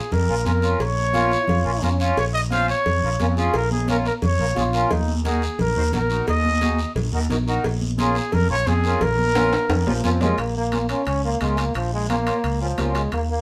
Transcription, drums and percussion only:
0.12 cowbell, low conga, long guiro
0.46 cowbell, high conga, short guiro
0.62 short guiro
0.80 cowbell, long guiro
1.13 cowbell, high conga, short guiro
1.32 short guiro
1.48 cowbell, low conga, long guiro
1.82 cowbell, high conga, short guiro
2.00 short guiro
2.17 cowbell, long guiro
2.51 cowbell, high conga, short guiro
2.68 short guiro
2.86 cowbell, low conga, long guiro
3.20 cowbell, high conga, short guiro
3.37 short guiro
3.54 cowbell, long guiro
3.71 high conga
3.88 cowbell, high conga, short guiro
4.05 short guiro
4.22 cowbell, low conga, long guiro
4.56 cowbell, high conga, short guiro
4.73 short guiro
4.91 cowbell, low conga, long guiro
5.08 high conga
5.25 cowbell, high conga, short guiro
5.42 short guiro
5.59 cowbell, low conga, long guiro
5.93 cowbell, high conga, low conga, short guiro
6.10 short guiro
6.27 cowbell, long guiro
6.45 high conga
6.61 cowbell, high conga, short guiro
6.79 short guiro
6.96 cowbell, low conga, long guiro
7.30 cowbell, high conga, short guiro
7.48 short guiro
7.64 cowbell, long guiro
7.81 high conga
7.98 cowbell, high conga, short guiro
8.15 short guiro
8.32 cowbell, low conga, long guiro
8.67 cowbell, high conga, short guiro
8.84 short guiro
9.01 cowbell, low conga, long guiro
9.19 high conga
9.35 cowbell, high conga, high timbale, short guiro
9.52 high timbale, short guiro
9.70 cowbell, low conga, high timbale, long guiro
9.87 high conga, low timbale
10.04 cowbell, high conga, short guiro
10.21 low conga, low timbale, short guiro
10.38 high conga, high timbale, long guiro
10.72 high conga, high timbale, short guiro
10.89 high timbale, short guiro
11.05 high conga, high timbale, long guiro
11.41 high conga, high timbale, short guiro
11.57 high timbale, short guiro
11.74 high timbale, long guiro
12.09 high conga, high timbale, short guiro
12.27 high timbale, short guiro
12.44 high timbale, long guiro
12.78 high conga, high timbale, low timbale, short guiro
12.95 high timbale, short guiro
13.12 high conga, high timbale, long guiro

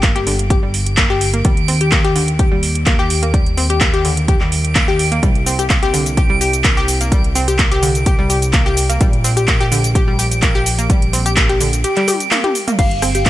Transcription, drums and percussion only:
0.03 kick, clap, closed hi-hat
0.16 closed hi-hat
0.27 open hi-hat
0.39 closed hi-hat
0.50 kick, closed hi-hat
0.74 open hi-hat
0.86 closed hi-hat
0.97 kick, clap, closed hi-hat
1.21 open hi-hat
1.34 closed hi-hat
1.45 kick, closed hi-hat
1.57 closed hi-hat
1.68 open hi-hat
1.81 closed hi-hat
1.92 kick, clap, closed hi-hat
2.04 closed hi-hat
2.16 open hi-hat
2.28 closed hi-hat
2.39 kick, closed hi-hat
2.63 open hi-hat
2.75 closed hi-hat
2.86 kick, clap, closed hi-hat
3.10 open hi-hat
3.23 closed hi-hat
3.34 kick, closed hi-hat
3.46 closed hi-hat
3.57 open hi-hat
3.70 closed hi-hat
3.81 kick, clap, closed hi-hat
3.94 closed hi-hat
4.05 open hi-hat
4.17 closed hi-hat
4.28 kick, closed hi-hat
4.41 clap
4.52 open hi-hat
4.65 closed hi-hat
4.75 kick, clap, closed hi-hat
4.99 open hi-hat
5.12 closed hi-hat
5.23 kick, closed hi-hat, shaker
5.35 closed hi-hat
5.46 open hi-hat, shaker
5.59 closed hi-hat, shaker
5.70 kick, clap, closed hi-hat, shaker
5.83 closed hi-hat
5.94 open hi-hat, shaker
6.06 closed hi-hat, shaker
6.17 kick, closed hi-hat, shaker
6.41 open hi-hat, shaker
6.53 closed hi-hat, shaker
6.64 kick, clap, closed hi-hat, shaker
6.88 open hi-hat, shaker
7.01 closed hi-hat, shaker
7.12 kick, closed hi-hat, shaker
7.24 closed hi-hat
7.35 open hi-hat, shaker
7.48 closed hi-hat, shaker
7.59 kick, clap, closed hi-hat, shaker
7.72 closed hi-hat
7.83 open hi-hat, shaker
7.95 closed hi-hat, shaker
8.06 kick, closed hi-hat, shaker
8.30 open hi-hat, shaker
8.42 closed hi-hat, shaker
8.53 kick, clap, closed hi-hat, shaker
8.77 open hi-hat, shaker
8.90 closed hi-hat, shaker
9.01 kick, closed hi-hat, shaker
9.13 closed hi-hat
9.24 open hi-hat, shaker
9.37 closed hi-hat, shaker
9.48 kick, clap, closed hi-hat, shaker
9.61 closed hi-hat
9.72 open hi-hat, shaker
9.84 closed hi-hat, shaker
9.95 kick, closed hi-hat, shaker
10.19 open hi-hat, shaker
10.31 closed hi-hat, shaker
10.42 kick, clap, closed hi-hat, shaker
10.66 open hi-hat, shaker
10.79 closed hi-hat, shaker
10.90 kick, closed hi-hat, shaker
11.02 closed hi-hat
11.13 open hi-hat, shaker
11.26 closed hi-hat, shaker
11.37 kick, clap, closed hi-hat, shaker
11.49 closed hi-hat
11.61 open hi-hat, shaker
11.73 closed hi-hat, shaker
11.84 closed hi-hat, shaker
11.96 clap, closed hi-hat
12.08 open hi-hat, high tom, shaker
12.20 closed hi-hat, shaker
12.31 clap, open hi-hat, mid tom, shaker
12.44 closed hi-hat, mid tom
12.55 open hi-hat, shaker
12.68 closed hi-hat, mid tom, shaker
12.79 kick, closed hi-hat, crash, shaker
12.91 closed hi-hat
13.02 cross-stick, open hi-hat, shaker
13.15 closed hi-hat, shaker
13.26 kick, clap, closed hi-hat, shaker

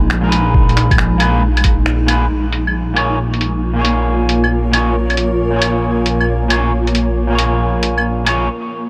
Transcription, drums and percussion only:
0.10 finger snap
0.32 closed hi-hat
0.54 kick
0.69 closed hi-hat
0.77 finger snap, closed hi-hat
0.91 kick, closed hi-hat, claves
0.98 finger snap
1.20 closed hi-hat, claves
1.57 closed hi-hat, claves
1.64 kick, closed hi-hat
1.86 finger snap
2.08 closed hi-hat, claves
2.53 closed hi-hat
2.67 claves
2.97 closed hi-hat, claves
3.34 closed hi-hat
3.41 closed hi-hat
3.85 closed hi-hat
4.29 closed hi-hat
4.44 claves
4.73 closed hi-hat, claves
5.10 closed hi-hat, claves
5.17 closed hi-hat
5.62 closed hi-hat, claves
6.06 closed hi-hat
6.20 claves
6.50 closed hi-hat, claves
6.87 closed hi-hat
6.95 closed hi-hat
7.39 closed hi-hat
7.83 closed hi-hat
7.98 claves
8.26 closed hi-hat, claves

